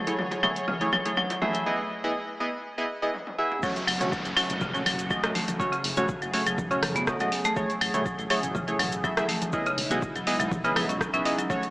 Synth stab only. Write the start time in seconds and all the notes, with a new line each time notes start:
0.07 A3 E4 G#4 C#5
0.43 A3 E4 G#4 C#5
0.81 A3 E4 G#4 C#5
1.05 A3 E4 G#4 C#5
1.42 A3 E4 G#4 E5
1.66 B3 E4 G#4 D#5
2.04 B3 E4 G#4 D#5
2.40 B3 E4 G#4 D#5
2.78 B3 E4 G#4 D#5
3.02 B3 E4 G#4 D#5
3.38 B3 E4 G#4 E5
3.63 A3 C#4 F#4 C#5
4.01 A3 C#4 F#4 C#5
4.37 A3 C#4 F#4 C#5
4.74 A3 C#4 F#4 C#5
5.10 A3 C#4 F#4 D#5
5.23 A3 C#4 F#4 D#5
5.59 A3 C#4 F#4 C#5
5.97 A3 C#4 F#4 C#5
6.33 A3 C#4 F#4 C#5
6.71 A3 C#4 F#4 C#5
7.07 A3 C#4 F#4 D#5
7.20 A3 C#4 F#4 D#5
7.56 A3 E4 G#4 C#5
7.94 A3 E4 G#4 C#5
8.30 A3 E4 G#4 C#5
8.68 A3 E4 G#4 C#5
9.04 A3 E4 G#4 E5
9.17 A3 E4 G#4 E5
9.53 B3 E4 G#4 D#5
9.91 B3 E4 G#4 D#5
10.27 B3 E4 G#4 D#5
10.64 B3 E4 G#4 D#5
10.76 B3 E4 G#4 E5
11.13 B3 E4 G#4 E5
11.25 B3 E4 G#4 D#5
11.50 A3 C#4 F#4 C#5